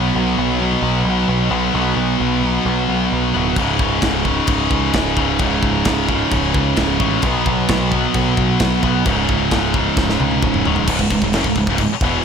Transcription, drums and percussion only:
3.56 kick, crash
3.79 kick
4.02 kick, snare, crash
4.25 kick
4.47 kick, crash
4.71 kick
4.93 kick, snare, crash
5.17 kick
5.39 kick, crash
5.63 kick
5.85 kick, snare, crash
6.09 kick
6.31 kick, crash
6.54 kick
6.76 kick, snare, crash
7.00 kick
7.22 kick, crash
7.46 kick
7.68 kick, snare, crash
7.92 kick
8.14 kick, crash
8.37 kick
8.60 kick, snare, crash
8.83 kick
9.05 kick, crash
9.29 kick
9.51 kick, snare, crash
9.74 kick
9.97 kick, snare
10.09 snare
10.20 high tom
10.31 high tom
10.42 kick, mid tom
10.54 mid tom
10.65 floor tom
10.76 floor tom
10.88 kick, crash
10.99 kick
11.10 kick, crash
11.22 kick
11.33 snare, crash
11.44 kick
11.56 kick, crash
11.67 kick
11.78 kick, crash
12.01 kick, crash

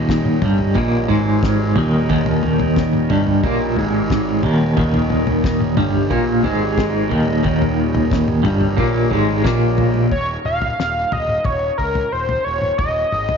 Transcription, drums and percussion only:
0.09 kick, snare
0.25 mid tom
0.42 floor tom, mid tom, high conga, low conga
0.59 floor tom
0.75 kick, floor tom
1.09 floor tom
1.43 kick, snare
1.76 floor tom, mid tom, low conga
1.93 high conga
2.09 kick, floor tom
2.26 floor tom
2.43 floor tom
2.60 floor tom, high conga
2.76 kick, snare
2.93 mid tom
3.10 floor tom, mid tom, high conga, low conga
3.27 floor tom
3.44 kick, floor tom
3.76 floor tom
4.10 kick, snare
4.43 floor tom, mid tom, low conga
4.60 high conga
4.77 kick, floor tom
4.94 floor tom
5.10 floor tom
5.27 floor tom, high conga
5.44 kick, snare
5.60 mid tom
5.77 floor tom, mid tom, high conga, low conga
5.94 floor tom
6.11 kick, floor tom
6.44 floor tom
6.78 kick, snare
7.11 floor tom, mid tom, low conga
7.28 high conga
7.44 kick, floor tom
7.62 floor tom
7.95 floor tom, high conga
8.11 kick, snare, low conga
8.28 mid tom
8.45 floor tom, mid tom, high conga, low conga
8.61 floor tom
8.78 kick, floor tom
9.11 floor tom
9.45 kick, snare
9.78 floor tom, low conga
9.94 high conga
10.12 kick, floor tom
10.45 mid tom
10.62 floor tom
10.80 snare
11.12 floor tom
11.29 mid tom
11.44 kick, floor tom, mid tom
11.79 kick
11.95 floor tom
12.29 floor tom
12.62 mid tom
12.79 kick, floor tom
13.12 mid tom
13.29 floor tom

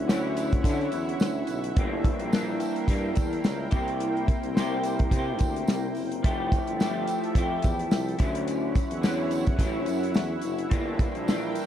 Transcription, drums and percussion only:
0.09 snare, tambourine
0.37 closed hi-hat, tambourine
0.52 kick, closed hi-hat
0.64 kick, closed hi-hat, tambourine
0.81 closed hi-hat
0.92 closed hi-hat, tambourine
1.09 closed hi-hat
1.20 snare, tambourine
1.47 closed hi-hat, tambourine
1.64 closed hi-hat
1.76 kick, closed hi-hat
2.04 kick, closed hi-hat
2.19 closed hi-hat
2.33 snare, tambourine
2.60 closed hi-hat, tambourine
2.76 closed hi-hat
2.88 kick, closed hi-hat, tambourine
3.15 kick, closed hi-hat, tambourine
3.33 closed hi-hat
3.44 snare, tambourine
3.71 kick, closed hi-hat, tambourine
3.88 closed hi-hat
4.00 closed hi-hat
4.17 closed hi-hat
4.28 kick, closed hi-hat, tambourine
4.43 closed hi-hat
4.57 snare, tambourine
4.83 closed hi-hat, tambourine
4.99 kick, closed hi-hat
5.11 kick, closed hi-hat, tambourine
5.39 kick, closed hi-hat, tambourine
5.56 closed hi-hat
5.67 snare, tambourine
5.95 open hi-hat, tambourine
6.12 closed hi-hat
6.24 kick, closed hi-hat, tambourine
6.52 kick, closed hi-hat, tambourine
6.67 closed hi-hat
6.80 snare, tambourine
7.07 closed hi-hat, tambourine
7.24 closed hi-hat
7.35 kick, closed hi-hat, tambourine
7.62 kick, closed hi-hat, tambourine
7.79 closed hi-hat
7.91 snare, tambourine
8.08 closed hi-hat
8.19 kick, closed hi-hat, tambourine
8.35 closed hi-hat
8.47 closed hi-hat, tambourine
8.75 kick, closed hi-hat, tambourine
8.91 closed hi-hat
9.03 snare, tambourine
9.31 closed hi-hat, tambourine
9.47 kick, closed hi-hat
9.59 kick, closed hi-hat, tambourine
9.86 closed hi-hat, tambourine
10.03 closed hi-hat
10.14 snare, tambourine
10.42 closed hi-hat, tambourine
10.58 closed hi-hat
10.71 kick, closed hi-hat, tambourine
10.99 kick, closed hi-hat, tambourine
11.15 closed hi-hat
11.28 snare, tambourine
11.55 closed hi-hat, tambourine

